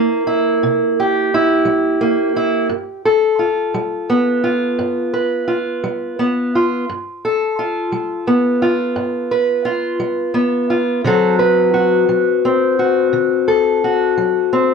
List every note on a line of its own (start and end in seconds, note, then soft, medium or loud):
0.00 0.20 G3 medium
0.00 2.00 A#3 medium
0.00 0.26 E4 medium
0.00 0.97 A#4 medium
0.27 1.31 E4 medium
0.63 1.25 C3 medium
1.00 3.05 G4 medium
1.34 2.35 E4 medium
1.65 2.28 G3 medium
2.01 2.70 A#3 medium
2.36 2.67 E4 medium
2.69 3.32 G2 medium
3.05 5.13 A4 medium
3.39 4.43 F4 medium
3.74 4.37 G3 medium
4.10 6.18 B3 medium
4.44 5.46 F4 medium
4.79 5.41 G2 medium
5.14 6.83 B4 medium
5.48 6.52 F4 medium
5.84 6.46 G3 medium
6.19 6.84 B3 medium
6.55 6.85 F4 medium
6.89 7.51 G2 medium
7.25 9.31 A4 medium
7.59 8.61 F4 medium
7.92 8.55 G3 medium
8.27 10.33 B3 medium
8.62 9.64 F4 medium
8.96 9.59 G2 medium
9.31 11.01 B4 medium
9.65 10.69 F4 medium
10.00 10.63 G3 medium
10.34 11.00 B3 medium
10.70 11.01 F4 medium
11.04 11.67 D3 medium
11.04 12.08 F#3 medium
11.04 12.45 C4 medium
11.04 11.73 F#4 medium
11.04 11.39 A4 medium
11.39 13.47 B4 medium
11.74 12.78 F#4 medium
12.09 12.72 F#3 medium
12.45 14.51 C4 medium
12.79 13.83 F#4 medium
13.13 13.76 D3 medium
13.48 14.74 A4 medium
13.84 14.74 F#4 medium
14.17 14.74 F#3 medium
14.53 14.74 C4 medium